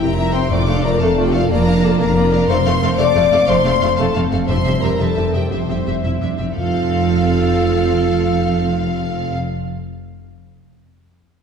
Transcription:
Already playing: harp F2 C3 C4 E4 C5
0.00 double bass section F1, cello section F2, clarinet C4, viola section C4 G4, french horn section A#4, harp E5, flute section E5, violin section G5 A#5
0.09 harp C6
0.17 viola section G3 E4, clarinet C4, violin section E5, harp E5, flute section E5
0.26 harp C5
0.32 clarinet C4, viola section C4 G4, harp E4, french horn section C5, flute section E5, violin section G5 C6
0.42 harp C4
0.50 double bass section F1, harp F2, timpani F2, cello section F2, viola section A3 F4, clarinet A3, violin section D5 D6, french horn section D5, flute section D5
0.59 harp F3
0.67 clarinet A3, harp D4, viola section D4 A4, flute section D5, violin section F5
0.75 harp F4
0.82 viola section A3 F4, clarinet A3, harp A4, french horn section A#4, violin section D5 A#5, flute section D5
0.91 harp D5
0.99 double bass section F1, cello section F2, clarinet A3, viola section D4 A4, french horn section A4, flute section D5, harp F5, violin section F5 A5
1.07 harp A5
1.16 viola section A3 F4, clarinet A3, violin section D5, flute section D5, harp F5
1.24 french horn section G4, harp D5, violin section G5
1.32 clarinet A3, viola section D4 A4, french horn section F4, harp A4, flute section D5, violin section F5
1.40 harp F4
1.49 double bass section F1, harp F2, cello section F2, viola section A#3 F4, clarinet A#3, french horn section A#4, flute section D5, violin section D5 A#5
1.57 harp F3
1.65 clarinet A#3, harp D4, viola section D4 A#4, flute section D5, violin section F5
1.74 harp F4
1.82 viola section A#3 F4, clarinet A#3, french horn section A4, harp A#4, flute section D5, violin section D5 A5
1.90 harp D5
1.98 double bass section F1, cello section F2, clarinet A#3, viola section D4 A#4, french horn section A#4, flute section D5, harp F5, violin section F5 A#5
2.07 harp A#5
2.15 clarinet A#3, viola section A#3 F4, flute section D5, violin section D5, harp F5
2.23 harp D5
2.32 clarinet A#3, viola section D4 A#4, harp A#4, flute section D5, violin section F5
2.40 harp F4
2.48 double bass section F1, harp F2, cello section F2, clarinet A3, viola section C4 A4, french horn section C5, violin section F5 C6, flute section F5
2.56 harp C3
2.65 double bass section F1, cello section F2, clarinet A3, harp C4, viola section C4 A4, flute section F5, violin section F5
2.73 harp F4
2.81 double bass section F1, cello section F2, clarinet A3, viola section C4 A4, harp A4, flute section F5, violin section F5
2.90 harp C5
2.98 double bass section F1, cello section F2, clarinet A3, viola section C4 A4, french horn section D5, harp F5, violin section F5 D6, flute section F5
3.06 harp A5
3.15 double bass section F1, cello section F2, clarinet A3, viola section C4 A4, harp F5, violin section F5, flute section F5
3.23 harp C5
3.31 double bass section F1, cello section F2, clarinet A3, viola section C4 A4, harp A4, flute section F5, violin section F5
3.40 harp F4
3.47 double bass section F1, harp F2, cello section F2, clarinet A3, viola section C4 A4, french horn section C5, violin section F5 C6, flute section F5
3.57 harp C3
3.64 double bass section F1, cello section F2, clarinet A3, harp C4, viola section C4 A4, violin section F5, flute section F5
3.74 harp F4
3.81 double bass section F1, cello section F2, clarinet A3, viola section C4 A4, harp A4, violin section F5, flute section F5
3.90 harp C5
3.97 double bass section F1, cello section F2, clarinet A3, viola section C4 A4, french horn section A4, violin section F5 A5, harp F5, flute section F5
4.07 harp A5
4.15 double bass section F1, cello section F2, clarinet A3, viola section C4 A4, harp F5, violin section F5, flute section F5
4.23 harp C5
4.31 double bass section F1, cello section F2, clarinet A3, viola section C4 A4, harp A4, violin section F5, flute section F5
4.40 harp F4
4.47 double bass section F1, harp F2, timpani F2, cello section F2, clarinet G3, viola section C4 G4, french horn section C5, violin section E5 C6, flute section E5
4.57 harp C3
4.65 double bass section F1, cello section F2, harp C4, viola section C4 G4, violin section E5
4.73 harp E4
4.80 double bass section F1, cello section F2, harp G4, french horn section A#4, violin section E5 A#5
4.84 viola section C4 G4
4.91 harp C5
4.99 double bass section F1, cello section F2, viola section C4 G4, french horn section A4, harp E5, violin section E5 A5
5.08 harp G5
5.16 double bass section F1, cello section F2, viola section C4 G4, violin section E5, harp E5
5.26 harp C5
5.34 double bass section F1, cello section F2, viola section C4 G4, harp G4, french horn section G4, violin section E5 G5
5.43 harp E4
5.52 double bass section F1, harp F2, cello section F2, clarinet G3, french horn section C4, viola section C4 G4, violin section C5 E5, flute section E5
5.61 harp C3
5.69 double bass section F1, cello section F2, viola section C4 G4, harp C4, violin section E5
5.78 harp E4
5.86 double bass section F1, cello section F2, viola section C4 G4, harp G4, violin section E5
5.96 harp C5
6.04 double bass section F1, cello section F2, viola section E4, violin section E5, harp E5
6.13 harp G5
6.21 double bass section F1, cello section F2, viola section D4, harp E5, violin section E5
6.30 harp C5
6.38 double bass section F1, cello section F2, viola section C4, harp G4, violin section E5
6.47 harp E4
6.55 double bass section F1, harp F2, cello section F2, timpani F2, viola section C4 A4, french horn section F4, clarinet A4, violin section F5, flute section F5
6.63 harp F3
6.70 harp C4
6.77 harp F4
6.84 harp A4
6.91 harp F5

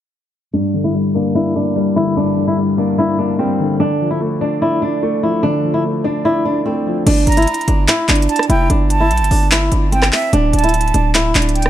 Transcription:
0.53 grand piano G2, nylon-string guitar D4
0.74 grand piano D3
0.84 nylon-string guitar E4
0.94 grand piano G3
1.14 grand piano A#3, nylon-string guitar D4
1.35 grand piano D4, nylon-string guitar E4
1.55 grand piano A#3, nylon-string guitar D4
1.76 grand piano G3
1.96 grand piano D3, nylon-string guitar E4
2.17 grand piano G2, nylon-string guitar D4
2.37 grand piano D3
2.48 nylon-string guitar E4
2.58 grand piano G3
2.78 grand piano A#3, nylon-string guitar D4
2.98 grand piano D4, nylon-string guitar E4
3.19 grand piano A#3, nylon-string guitar D4
3.39 grand piano G3, nylon-string guitar C4
3.60 grand piano D3
3.80 grand piano D3, nylon-string guitar D4
4.00 grand piano F3
4.11 nylon-string guitar E4
4.21 grand piano A3
4.41 nylon-string guitar D4, grand piano D4
4.62 nylon-string guitar E4, grand piano D5
4.82 nylon-string guitar D4, grand piano D4
5.03 grand piano A3
5.23 grand piano F3, nylon-string guitar E4
5.43 grand piano D3, nylon-string guitar D4
5.64 grand piano F3
5.74 nylon-string guitar E4
5.84 grand piano A3
6.04 grand piano D4, nylon-string guitar D4
6.25 nylon-string guitar E4, grand piano D5
6.45 nylon-string guitar D4, grand piano D4
6.66 grand piano A3, nylon-string guitar C4
6.86 grand piano F3
7.07 808-style bass G1, nylon-string guitar D4, closed hi-hat, crash
7.27 808-style bass G1, flute A#5, closed hi-hat
7.32 closed hi-hat
7.37 nylon-string guitar E4, closed hi-hat
7.42 closed hi-hat
7.47 closed hi-hat
7.54 closed hi-hat
7.61 closed hi-hat
7.68 808-style bass G1, nylon-string guitar D4, closed hi-hat
7.88 nylon-string guitar E4, clap, closed hi-hat
8.09 808-style bass G1, nylon-string guitar D4, clap, closed hi-hat
8.15 closed hi-hat
8.22 closed hi-hat
8.29 flute A5, closed hi-hat
8.36 cross-stick, closed hi-hat
8.43 closed hi-hat
8.49 808-style bass F1, nylon-string guitar E4, flute G5, closed hi-hat
8.70 808-style bass G1, nylon-string guitar D4, closed hi-hat
8.90 flute A5, closed hi-hat
9.00 nylon-string guitar E4
9.11 808-style bass A#1, closed hi-hat
9.17 808-style bass G1, closed hi-hat
9.24 closed hi-hat
9.31 808-style bass G1, nylon-string guitar D4, open hi-hat
9.51 nylon-string guitar E4, clap, closed hi-hat
9.72 808-style bass G1, nylon-string guitar D4, closed hi-hat
9.92 nylon-string guitar C4, flute G5, closed hi-hat
10.02 cross-stick, clap
10.13 flute E5, clap, open hi-hat
10.33 808-style bass D1, nylon-string guitar D4, closed hi-hat
10.53 808-style bass D1, flute A5, closed hi-hat
10.59 closed hi-hat
10.64 nylon-string guitar E4, closed hi-hat
10.69 closed hi-hat
10.74 closed hi-hat
10.81 closed hi-hat
10.88 closed hi-hat
10.94 808-style bass D1, nylon-string guitar D4, closed hi-hat
11.15 nylon-string guitar E4, clap, closed hi-hat
11.35 808-style bass D1, nylon-string guitar D4, clap, closed hi-hat
11.42 closed hi-hat
11.49 closed hi-hat
11.55 flute G5, closed hi-hat
11.62 cross-stick, closed hi-hat

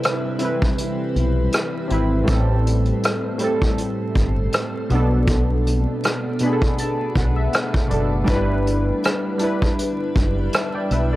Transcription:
Already playing: synth keys C3 C4 E4 A4 B4 D5, ambient pad G3 C4 E4 B4
0.03 cross-stick, closed hi-hat
0.39 synth keys E3 C4, closed hi-hat
0.43 synth keys E4 B4
0.62 kick
0.78 closed hi-hat
1.16 fingered electric bass B1, closed hi-hat
1.52 cross-stick, closed hi-hat
1.88 fingered electric bass G#1, synth keys C3 C4, closed hi-hat
1.92 synth keys E4 B4
2.24 synth keys A2 G3 C4, closed hi-hat
2.28 fingered electric bass A1, ambient pad A3 C4, synth keys A4, kick
2.67 closed hi-hat
2.85 closed hi-hat
3.03 cross-stick, closed hi-hat
3.38 synth keys A2 G3 C4, closed hi-hat
3.44 synth keys A4
3.62 kick
3.78 closed hi-hat
4.15 fingered electric bass G1, kick, closed hi-hat
4.52 cross-stick, closed hi-hat
4.89 fingered electric bass B1, synth keys B2 B3 D4, ambient pad A3 B3 D4, closed hi-hat
4.95 synth keys A4
5.27 kick, closed hi-hat
5.67 closed hi-hat
6.03 cross-stick, closed hi-hat
6.39 synth keys B2 B3, closed hi-hat
6.43 synth keys D4 G#4 B5
6.53 synth keys A4
6.62 kick
6.78 synth keys A5, closed hi-hat
7.16 fingered electric bass B1, synth keys F#5, kick, closed hi-hat
7.36 synth keys E5
7.53 synth keys F#5, cross-stick, closed hi-hat
7.74 kick
7.88 fingered electric bass F#1, synth keys B2 B3 D4 D5, closed hi-hat
7.93 synth keys A4
8.24 synth keys G3 D4, ambient pad G3 D4 E4 B4, kick, closed hi-hat
8.28 fingered electric bass G1, synth keys E4 B4
8.67 closed hi-hat
9.04 cross-stick, closed hi-hat
9.38 synth keys G3 D4 E4, closed hi-hat
9.44 synth keys B4
9.62 kick
9.79 closed hi-hat
10.16 fingered electric bass F#1, kick, closed hi-hat
10.53 synth keys E5 A5, cross-stick, closed hi-hat
10.75 synth keys D5 G5
10.91 fingered electric bass B1, synth keys B4 E5, closed hi-hat
11.13 synth keys D5

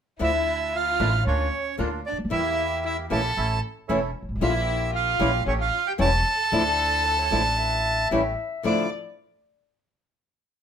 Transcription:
0.19 upright bass D2, nylon-string guitar D3 F3 A3 D4 E4, bandoneon F3 D4 E4, violin section E4
0.23 bandoneon E5
0.74 violin section F4, bandoneon F5
0.99 upright bass A1, nylon-string guitar D3 A#3 D4 F4, bandoneon F3 D4 E4
1.26 upright bass D2, bandoneon A#3 D4 F4 C#5, violin section C#4
1.78 upright bass D2, nylon-string guitar D3 A#3 D4 F4, bandoneon A#3 D4 F4
2.06 violin section D4, bandoneon D5
2.12 upright bass C#2
2.19 upright bass D2
2.25 upright bass D#2
2.30 upright bass E2, nylon-string guitar E3 G3 E4, bandoneon A#3 E4 G4 E5, violin section E4
2.85 violin section E4, bandoneon E5
3.09 upright bass A#1, nylon-string guitar E3 A3 C#4 E4, bandoneon A#3 E4 G4 A5, violin section A4
3.36 upright bass A1, bandoneon C#4 E4 A4
3.88 upright bass E1, nylon-string guitar E3 A3 C#4 E4, bandoneon C#4 E4 A4
4.23 upright bass G1
4.29 upright bass G#1
4.36 upright bass A1
4.40 upright bass A#1, nylon-string guitar D3 G3 D4 F4, bandoneon F3 A#3 G4 E5, violin section E4
4.92 violin section F4, bandoneon F5
5.19 upright bass A#1, nylon-string guitar E3 G3 C#4 E4, bandoneon A#3 F4 G4
5.46 upright bass A1, bandoneon A3 C#4 G4 C#5, violin section C#4
5.60 violin section F4, bandoneon F5
5.87 violin section G4, bandoneon G5
5.98 upright bass E1, nylon-string guitar E3 G3 C#4 E4, bandoneon A3 C#4 G4 A5, violin section A4
6.51 upright bass D2, nylon-string guitar D3 F3 A3 D4 E4, bandoneon F3 D4 E4, clarinet D5
7.06 clarinet A4
7.19 clarinet C#5
7.30 upright bass A1, nylon-string guitar D3 F3 A3 D4 E4, bandoneon F3 D4 E4
7.44 clarinet D5
7.57 clarinet E5
8.11 upright bass A1, nylon-string guitar E3 G3 C#4 E4, bandoneon A3 C#4 G4
8.63 upright bass D2, nylon-string guitar D3 F3 A3 D4 E4, bandoneon D4 E4 F4 D6, violin section D5, clarinet F5

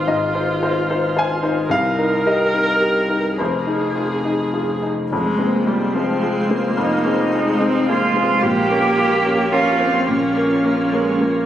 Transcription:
Already playing: sub bass G#1, upright piano G#2 D#4 F4 C5 F5 G5, viola F4
0.07 upright piano G#2 D#5
0.34 upright piano D#4 C5
0.62 upright piano F4 C5
0.90 upright piano D#4 C5
1.16 upright piano F4 C5 G#5
1.42 upright piano D#4 C5
1.69 upright piano C2 F5, sub bass C2, viola A#4
1.98 upright piano D#4 A#4
2.26 upright piano G4 A#4 D#5
2.54 upright piano D#4 A#4
2.80 upright piano G4 A#4
3.09 upright piano D#4 A#4
3.38 sub bass F1, upright piano F2 C5, viola G#4
3.67 upright piano D#4 G#4
3.95 upright piano F4 G#4
4.25 upright piano D#4 G#4
4.54 upright piano F4 G#4
4.82 upright piano D#4 G#4
5.11 sub bass F1, upright piano F2, viola G#3, ambient pad G#3 F4 C5
5.38 cello A#3, upright piano C4 G#4
5.67 viola G3, upright piano F4 G#4
5.94 viola F3, cello C4, upright piano C4 G#4
6.22 viola G#3, upright piano F4 G#4
6.50 viola A#3, upright piano C4 G#4
6.77 upright piano F2, cello D#4
7.06 upright piano C4 G#4
7.34 viola G#3, upright piano F4 G#4
7.60 upright piano C4 G#4, viola C4
7.89 viola A#3, cello F4, upright piano F4 G#4
8.15 viola G#3, upright piano C4 G#4
8.43 sub bass A#1, upright piano A#2, viola A#3, ambient pad A#3 F4 C#5, cello G4
8.70 upright piano C#4 A#4
8.98 upright piano F4 A#4
9.25 upright piano C#4 A#4
9.51 viola C#4, upright piano F4 A#4, cello F4
9.79 viola C4, upright piano C#4 A#4
10.07 upright piano A#2, viola A#3, cello C#4
10.37 upright piano C#4 A#4
10.63 viola A#3, upright piano F4 A#4
10.92 viola G#3, upright piano C#4 A#4
11.20 viola A#3, upright piano F4 A#4

